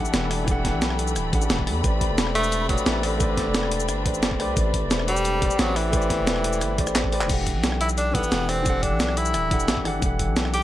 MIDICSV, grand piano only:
0, 0, Header, 1, 2, 480
1, 0, Start_track
1, 0, Key_signature, 1, "minor"
1, 0, Tempo, 340909
1, 673, Time_signature, 4, 2, 24, 8
1, 14970, End_track
2, 0, Start_track
2, 0, Title_t, "Grand piano"
2, 0, Program_c, 0, 0
2, 0, Control_c, 0, 64, 127
2, 0, Note_on_c, 0, 52, 86
2, 0, Note_on_c, 0, 62, 78
2, 0, Note_on_c, 0, 67, 79
2, 0, Note_on_c, 0, 69, 75
2, 0, Note_on_c, 0, 78, 88
2, 1, Note_off_c, 0, 78, 0
2, 1, Note_on_c, 0, 78, 98
2, 604, Note_off_c, 0, 52, 0
2, 625, Note_on_c, 0, 52, 103
2, 628, Note_off_c, 0, 62, 0
2, 644, Note_off_c, 0, 67, 0
2, 649, Note_on_c, 0, 62, 93
2, 656, Note_off_c, 0, 69, 0
2, 668, Note_off_c, 0, 78, 0
2, 673, Note_on_c, 0, 67, 90
2, 698, Note_on_c, 0, 69, 95
2, 722, Note_on_c, 0, 78, 115
2, 1820, Note_off_c, 0, 52, 0
2, 1832, Note_off_c, 0, 62, 0
2, 1844, Note_off_c, 0, 67, 0
2, 1848, Note_on_c, 0, 52, 83
2, 1856, Note_off_c, 0, 69, 0
2, 1860, Note_on_c, 0, 62, 76
2, 1869, Note_off_c, 0, 78, 0
2, 1873, Note_on_c, 0, 67, 75
2, 1884, Note_on_c, 0, 69, 75
2, 1896, Note_on_c, 0, 78, 93
2, 1948, Note_off_c, 0, 52, 0
2, 1958, Note_off_c, 0, 62, 0
2, 1964, Note_off_c, 0, 67, 0
2, 1969, Note_on_c, 0, 52, 77
2, 1970, Note_off_c, 0, 69, 0
2, 1976, Note_off_c, 0, 78, 0
2, 1981, Note_on_c, 0, 62, 71
2, 1993, Note_on_c, 0, 67, 71
2, 2005, Note_on_c, 0, 69, 74
2, 2018, Note_on_c, 0, 78, 84
2, 2056, Note_off_c, 0, 52, 0
2, 2063, Note_off_c, 0, 62, 0
2, 2068, Note_off_c, 0, 67, 0
2, 2074, Note_off_c, 0, 69, 0
2, 2081, Note_off_c, 0, 78, 0
2, 2545, Note_on_c, 0, 57, 85
2, 2569, Note_on_c, 0, 67, 76
2, 2593, Note_on_c, 0, 71, 78
2, 2608, Control_c, 0, 64, 0
2, 2617, Note_on_c, 0, 72, 73
2, 2641, Note_on_c, 0, 74, 85
2, 2844, Control_c, 0, 64, 127
2, 3723, Note_off_c, 0, 57, 0
2, 3744, Note_on_c, 0, 57, 87
2, 3747, Note_off_c, 0, 67, 0
2, 3764, Note_off_c, 0, 71, 0
2, 3768, Note_on_c, 0, 67, 79
2, 3776, Note_off_c, 0, 72, 0
2, 3788, Note_off_c, 0, 74, 0
2, 3793, Note_on_c, 0, 71, 77
2, 3817, Note_on_c, 0, 72, 77
2, 3841, Note_on_c, 0, 74, 94
2, 4443, Note_off_c, 0, 57, 0
2, 4464, Note_on_c, 0, 57, 105
2, 4467, Note_off_c, 0, 67, 0
2, 4484, Note_off_c, 0, 71, 0
2, 4488, Note_on_c, 0, 67, 92
2, 4496, Note_off_c, 0, 72, 0
2, 4508, Note_off_c, 0, 74, 0
2, 4512, Note_on_c, 0, 71, 95
2, 4536, Note_on_c, 0, 72, 91
2, 4561, Note_on_c, 0, 74, 108
2, 5660, Note_off_c, 0, 57, 0
2, 5671, Note_off_c, 0, 67, 0
2, 5684, Note_off_c, 0, 71, 0
2, 5688, Note_on_c, 0, 57, 86
2, 5696, Note_off_c, 0, 72, 0
2, 5700, Note_on_c, 0, 67, 79
2, 5708, Note_off_c, 0, 74, 0
2, 5713, Note_on_c, 0, 71, 77
2, 5724, Note_on_c, 0, 72, 80
2, 5736, Note_on_c, 0, 74, 93
2, 6148, Note_off_c, 0, 57, 0
2, 6158, Note_off_c, 0, 67, 0
2, 6164, Note_off_c, 0, 71, 0
2, 6169, Note_on_c, 0, 57, 92
2, 6170, Note_off_c, 0, 72, 0
2, 6176, Note_off_c, 0, 74, 0
2, 6181, Note_on_c, 0, 67, 89
2, 6194, Note_on_c, 0, 71, 88
2, 6205, Note_on_c, 0, 72, 87
2, 6218, Note_on_c, 0, 74, 99
2, 6364, Note_off_c, 0, 57, 0
2, 6385, Note_on_c, 0, 57, 84
2, 6388, Note_off_c, 0, 67, 0
2, 6405, Note_off_c, 0, 71, 0
2, 6409, Note_on_c, 0, 67, 77
2, 6410, Note_off_c, 0, 72, 0
2, 6417, Note_off_c, 0, 74, 0
2, 6434, Note_on_c, 0, 71, 79
2, 6458, Note_on_c, 0, 72, 76
2, 6482, Note_on_c, 0, 74, 92
2, 7564, Note_off_c, 0, 57, 0
2, 7585, Note_on_c, 0, 57, 88
2, 7588, Note_off_c, 0, 67, 0
2, 7604, Note_off_c, 0, 71, 0
2, 7609, Note_on_c, 0, 67, 77
2, 7617, Note_off_c, 0, 72, 0
2, 7629, Note_off_c, 0, 74, 0
2, 7633, Note_on_c, 0, 71, 82
2, 7657, Note_on_c, 0, 72, 79
2, 7681, Note_on_c, 0, 74, 97
2, 8283, Note_off_c, 0, 57, 0
2, 8304, Note_on_c, 0, 57, 99
2, 8306, Note_off_c, 0, 67, 0
2, 8324, Note_off_c, 0, 71, 0
2, 8328, Note_on_c, 0, 67, 95
2, 8336, Note_off_c, 0, 72, 0
2, 8348, Note_off_c, 0, 74, 0
2, 8352, Note_on_c, 0, 71, 94
2, 8376, Note_on_c, 0, 72, 94
2, 8400, Note_on_c, 0, 74, 112
2, 9500, Note_off_c, 0, 57, 0
2, 9511, Note_off_c, 0, 67, 0
2, 9524, Note_off_c, 0, 71, 0
2, 9528, Note_on_c, 0, 57, 81
2, 9536, Note_off_c, 0, 72, 0
2, 9539, Note_on_c, 0, 67, 77
2, 9548, Note_off_c, 0, 74, 0
2, 9551, Note_on_c, 0, 71, 78
2, 9564, Note_on_c, 0, 72, 77
2, 9576, Note_on_c, 0, 74, 92
2, 9987, Note_off_c, 0, 57, 0
2, 9997, Note_off_c, 0, 67, 0
2, 10003, Note_off_c, 0, 71, 0
2, 10008, Note_on_c, 0, 57, 92
2, 10009, Note_off_c, 0, 72, 0
2, 10015, Note_off_c, 0, 74, 0
2, 10020, Note_on_c, 0, 67, 85
2, 10033, Note_on_c, 0, 71, 83
2, 10045, Note_on_c, 0, 72, 87
2, 10057, Note_on_c, 0, 74, 101
2, 10224, Note_on_c, 0, 52, 79
2, 10232, Note_off_c, 0, 57, 0
2, 10238, Note_off_c, 0, 67, 0
2, 10244, Note_off_c, 0, 71, 0
2, 10249, Note_on_c, 0, 62, 72
2, 10250, Note_off_c, 0, 72, 0
2, 10256, Note_off_c, 0, 74, 0
2, 10272, Note_on_c, 0, 67, 76
2, 10294, Control_c, 0, 64, 0
2, 10297, Note_on_c, 0, 69, 71
2, 10321, Note_on_c, 0, 78, 86
2, 10526, Control_c, 0, 64, 127
2, 11404, Note_off_c, 0, 52, 0
2, 11425, Note_on_c, 0, 52, 87
2, 11428, Note_off_c, 0, 62, 0
2, 11444, Note_off_c, 0, 67, 0
2, 11450, Note_on_c, 0, 62, 76
2, 11456, Note_off_c, 0, 69, 0
2, 11468, Note_off_c, 0, 78, 0
2, 11474, Note_on_c, 0, 67, 81
2, 11497, Note_on_c, 0, 69, 79
2, 11522, Note_on_c, 0, 78, 94
2, 12123, Note_off_c, 0, 52, 0
2, 12144, Note_on_c, 0, 52, 103
2, 12147, Note_off_c, 0, 62, 0
2, 12164, Note_off_c, 0, 67, 0
2, 12168, Note_on_c, 0, 62, 91
2, 12176, Note_off_c, 0, 69, 0
2, 12189, Note_off_c, 0, 78, 0
2, 12192, Note_on_c, 0, 67, 90
2, 12216, Note_on_c, 0, 69, 95
2, 12240, Note_on_c, 0, 78, 112
2, 13340, Note_off_c, 0, 52, 0
2, 13352, Note_off_c, 0, 62, 0
2, 13364, Note_off_c, 0, 67, 0
2, 13368, Note_on_c, 0, 52, 84
2, 13376, Note_off_c, 0, 69, 0
2, 13380, Note_on_c, 0, 62, 78
2, 13388, Note_off_c, 0, 78, 0
2, 13392, Note_on_c, 0, 67, 80
2, 13404, Note_on_c, 0, 69, 76
2, 13416, Note_on_c, 0, 78, 94
2, 13827, Note_off_c, 0, 52, 0
2, 13838, Note_off_c, 0, 62, 0
2, 13844, Note_off_c, 0, 67, 0
2, 13848, Note_on_c, 0, 52, 93
2, 13850, Note_off_c, 0, 69, 0
2, 13856, Note_off_c, 0, 78, 0
2, 13860, Note_on_c, 0, 62, 85
2, 13872, Note_on_c, 0, 67, 85
2, 13884, Note_on_c, 0, 69, 84
2, 13896, Note_on_c, 0, 78, 104
2, 14044, Note_off_c, 0, 52, 0
2, 14065, Note_on_c, 0, 52, 84
2, 14068, Note_off_c, 0, 62, 0
2, 14084, Note_off_c, 0, 67, 0
2, 14089, Note_on_c, 0, 62, 78
2, 14090, Note_off_c, 0, 69, 0
2, 14096, Note_off_c, 0, 78, 0
2, 14113, Note_on_c, 0, 67, 78
2, 14137, Note_on_c, 0, 69, 73
2, 14162, Note_on_c, 0, 78, 93
2, 14970, Note_off_c, 0, 52, 0
2, 14970, Note_off_c, 0, 62, 0
2, 14970, Note_off_c, 0, 67, 0
2, 14970, Note_off_c, 0, 69, 0
2, 14970, Note_off_c, 0, 78, 0
2, 14970, End_track
0, 0, End_of_file